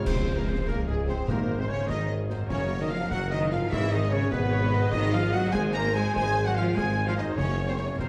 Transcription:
Already playing: harp F3 G#3 G#4 G#5
0.02 french horn section C4, harp F4, violin section C5
0.06 double bass section C#2, tuba C#2, cello section C3, viola section G#4, flute section C5, oboe C5, clarinet C5, violin section C5, concert bass drum, snare, crash
0.36 cello section A#2, french horn section A#3, violin section A#4, flute section A#4, oboe A#4, clarinet A#4
0.45 cello section C3, french horn section C4, flute section C5, violin section C5, oboe C5, clarinet C5
0.66 double bass section C#2, tuba C#2, cello section A#2, french horn section A#3, violin section A#4, flute section A#4, oboe A#4, clarinet A#4, concert bass drum, snare
0.86 cello section G#2, french horn section G#3, violin section G#4, flute section G#4, oboe G#4, clarinet G#4
1.06 cello section C3, french horn section C4, flute section C5, violin section C5, clarinet C5, snare
1.10 harp G#2, oboe C5
1.15 harp G#3
1.19 harp C4
1.24 french horn section A#3, harp G#4, flute section A#4, violin section A#4
1.28 tuba G#1, double bass section G#1, timpani G#2, cello section A#2, clarinet A#4, violin section A#4, oboe A#4, viola section C5, concert bass drum, snare
1.58 cello section C3, french horn section C4, flute section C5, violin section C5, oboe C5, clarinet C5
1.67 cello section C#3, french horn section C#4, violin section C#5, flute section C#5, oboe C#5
1.71 clarinet C#5
1.88 double bass section G#1, tuba G#1, cello section D#3, french horn section D#4, viola section A#4, flute section D#5, violin section D#5, oboe D#5, clarinet D#5, concert bass drum, snare
2.10 viola section G#4
2.30 harp F#2, viola section C5, snare
2.36 harp A#3
2.41 harp C#4
2.46 cello section C#3, french horn section C#4, harp C#5
2.50 tuba F#1, double bass section F#1, viola section A#4, violin section C#5, flute section C#5, oboe C#5, clarinet C#5, concert bass drum, snare, crash
2.80 cello section D#3, french horn section D#4, flute section D#5, violin section D#5, oboe D#5, clarinet D#5
2.90 cello section F3, french horn section F4, flute section F5, violin section F5, oboe F5, clarinet F5
3.10 tuba F#1, double bass section F#1, cello section F#3, french horn section F#4, violin section F#5, clarinet F#5, flute section F#5, oboe F#5, concert bass drum, snare
3.30 cello section D#3, flute section D#5, violin section D#5, oboe D#5, clarinet D#5
3.34 french horn section D#4
3.51 harp G#2, cello section F3, french horn section F4, flute section F5, violin section F5, oboe F5, clarinet F5, snare
3.58 harp B3
3.62 harp E4
3.67 french horn section E4, harp G#4, violin section E5, flute section E5
3.71 double bass section G#1, tuba G#1, timpani G#2, cello section E3, viola section G#4, clarinet E5, oboe E5, concert bass drum, snare
3.89 cello section D#3, french horn section D#4, flute section D#5, violin section D#5, oboe D#5
3.93 clarinet D#5
4.10 cello section C#3, french horn section C#4, violin section C#5, flute section C#5, clarinet C#5, oboe C#5
4.29 tuba G#1, double bass section G#1, cello section B2, flute section B4, violin section B4, oboe B4, viola section B4, concert bass drum, snare
4.33 french horn section B3, clarinet B4
4.52 viola section C#5
4.72 harp G#2, viola section D#5, snare
4.78 harp C4 D#4
4.87 harp G#4, violin section D#5
4.92 double bass section G#1, tuba G#1, timpani G#2, cello section D#3, french horn section D#4, flute section D#5, violin section D#5, clarinet D#5, oboe D#5, concert bass drum, snare, crash
5.11 cello section F3, french horn section F4, violin section F5, flute section F5, clarinet F5, oboe F5
5.32 cello section F#3, french horn section F#4, violin section F#5, clarinet F#5, flute section F#5, oboe F#5
5.52 double bass section G#1, tuba G#1, cello section G#3, french horn section G#4, viola section C5, violin section G#5, flute section G#5, clarinet G#5, oboe G#5, concert bass drum, snare
5.72 cello section A#3, french horn section A#4, violin section A#5, flute section A#5, clarinet A#5
5.77 oboe A#5
5.93 cello section G#3, french horn section G#4, clarinet G#5, flute section G#5, violin section G#5, oboe G#5, snare
6.14 double bass section G#1, tuba G#1, cello section G#3, french horn section G#4, flute section G#5, violin section G#5, clarinet G#5, oboe G#5, concert bass drum, snare
6.45 cello section F#3, french horn section F#4, clarinet F#5, violin section F#5, flute section F#5, oboe F#5
6.55 cello section F3, french horn section F4, clarinet F5, violin section F5, oboe F5, flute section F5
6.75 double bass section G#1, tuba G#1, cello section G#3, french horn section G#4, viola section C5, violin section G#5, clarinet G#5, oboe G#5, flute section G#5, concert bass drum, snare
7.06 cello section F3, french horn section F4, violin section F5, clarinet F5, flute section F5, oboe F5
7.15 cello section D#3, french horn section D#4, violin section D#5, flute section D#5, clarinet D#5, oboe D#5, snare
7.20 harp F#2
7.25 harp A#3
7.29 harp F#4
7.33 harp A#4, violin section C#5, flute section C#5, viola section C#5, oboe C#5
7.37 tuba F#1, double bass section F#1, cello section C#3, french horn section C#4, clarinet C#5, concert bass drum, snare, crash
7.66 cello section C3, french horn section C4, violin section C5, flute section C5, oboe C5, clarinet C5
7.77 cello section C#3, french horn section C#4, violin section C#5, clarinet C#5, flute section C#5
7.81 oboe C#5
7.98 double bass section F#1, tuba F#1, cello section C3, french horn section C4, viola section A#4, violin section C5, oboe C5, flute section C5, concert bass drum, snare
8.02 clarinet C5

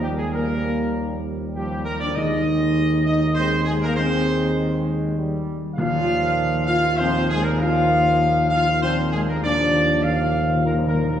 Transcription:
Already playing: tuba D#2, trombone section F3 G3
0.03 french horn section G3, trumpet section G4
0.17 french horn section G#3, trumpet section G#4
0.33 trombone section F3 G3, french horn section A#3, trumpet section A#4
1.55 trombone section F3 G3, french horn section G3, trumpet section G4
1.84 french horn section A#3, trumpet section A#4
1.99 french horn section D4, trumpet section D5
2.15 tuba D#2, trombone section D#3 G#3, timpani D#3, french horn section D#4, trumpet section D#5
3.06 french horn section D#4, trumpet section D#5
3.35 trombone section D#3 G#3, french horn section C4, trumpet section C5
3.65 trumpet section G#4
3.69 french horn section G#3
3.81 french horn section A#3, trumpet section A#4
3.95 trombone section D#3 G#3, trumpet section C5
3.99 french horn section C4
5.17 trombone section G3
5.75 tuba D#2, trombone section A#2 F3, timpani D#3, french horn section F4, trumpet section F5
6.66 french horn section F4, trumpet section F5
6.97 trombone section A#2 F3, french horn section C4, trumpet section C5
7.28 french horn section G#3, trumpet section G#4
7.43 french horn section A#3, trumpet section A#4
7.60 trombone section A#2 F3, french horn section F4, trumpet section F5
8.50 french horn section F4, trumpet section F5
8.82 trombone section A#2 F3, french horn section C4, trumpet section C5
9.11 french horn section G#3, trumpet section G#4
9.27 french horn section A#3, trumpet section A#4
9.43 tuba D#2, trombone section A#2 F3, timpani D#3, french horn section D4, trumpet section D5
9.59 timpani D#3
9.66 timpani D#3
9.73 timpani D#3
9.81 timpani D#3
10.02 trombone section A#2 F3, timpani D#3, french horn section F4, trumpet section F5
10.11 timpani D#3
10.19 timpani D#3
10.26 timpani D#3
10.34 timpani D#3
10.42 timpani D#3
10.49 timpani D#3
10.57 timpani D#3
10.65 trombone section A#2 F3, timpani D#3, french horn section A#3, trumpet section A#4
10.73 timpani D#3
10.80 timpani D#3
10.88 timpani D#3, french horn section A#3, trumpet section A#4
10.95 timpani D#3
11.03 timpani D#3
11.08 timpani D#3, french horn section A#3, trumpet section A#4

